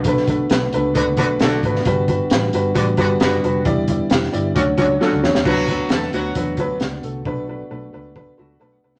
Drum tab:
CC |----------------|----------------|----------------|x---------------|
HH |x-x-x-x-x-x-x-x-|x-x-x-x-x-x-x-x-|x-x-x-x-x-x-----|--x-x-x-x-x-x-x-|
SD |-o--o-------o--o|----o-------o---|----oo------o-oo|----oo------o---|
BD |o-o-----o-o---o-|o-o-----o-o-----|o-o-----o-o-----|o-o-----o-o-----|

CC |----------------|
HH |----------------|
SD |---------------o|
BD |o-------o-------|